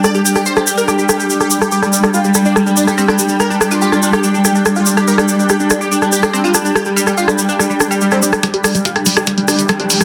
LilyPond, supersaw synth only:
\new Staff \with { instrumentName = "Supersaw synth" } { \time 4/4 \key c \minor \tempo 4 = 143 d''16 g'16 g'16 g'16 c''16 g'16 g'16 bes'16 g'16 g'16 g'16 g'16 g'16 g'16 g'16 g'16 | g'16 g16 g16 g16 f'16 g16 g16 d'16 g16 g16 d'16 g16 g16 d'16 g16 g16 | bes'16 d'16 d'16 d'16 g'16 d'16 d'16 g'16 d'16 d'16 g'16 d'16 d'16 f'16 d'16 d'16 | bes'16 d'16 d'16 d'16 g'16 d'16 d'16 g'16 d'16 d'16 g'16 d'16 d'16 f'16 d'16 d'16 |
g'16 g16 g16 g16 f'16 g16 g16 d'16 g16 g16 d'16 g16 g16 c'16 g16 g16 | g'16 g16 g16 g16 f'16 g16 g16 d'16 g16 g16 d'16 g16 g16 d'16 g16 g16 | }